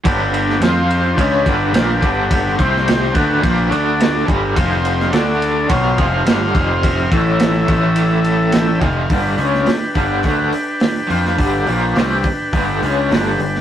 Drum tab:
RD |x-x-x-x-x-x-x-x-|x-x-x-x-x-x-x-x-|x-x-x-x-x-x-x-x-|x-x-x-x-x-x-x-x-|
HH |----------------|----------------|----------------|----------------|
SD |---oo-------o---|---oo-------o---|---oo-------o---|----o-------o---|
BD |o-------o-o---o-|o-o---o-o-----o-|o-------o-o---o-|o-o---o-------o-|

RD |----------------|----------------|
HH |o-o-o-o-o-o-o-o-|o-o-o-o-o-o-o-o-|
SD |---oo-------o--o|----o-------o--o|
BD |o-----o-o-------|o-----o-o-------|